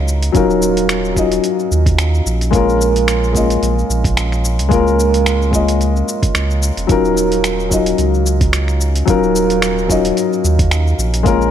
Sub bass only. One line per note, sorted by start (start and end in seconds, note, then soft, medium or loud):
0.00 0.30 C#2 medium
0.35 1.39 D#1 medium
1.71 2.21 D#2 loud
2.26 3.58 A#1 loud
3.62 3.84 A#1 loud
3.90 4.61 A#1 loud
4.59 6.03 C#2 medium
6.35 6.71 C#2 medium
6.77 6.87 F1 medium
6.89 7.94 D#1 loud
7.98 9.03 C#2 medium
9.08 10.12 D#1 loud
10.44 10.94 D#2 loud
10.98 11.51 A#1 loud